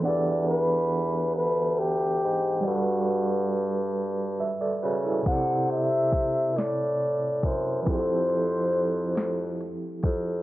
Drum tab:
HH |------|------|xxxxxx|xxxxxx|
SD |------|------|---o--|---o--|
BD |------|------|o-o--o|o----o|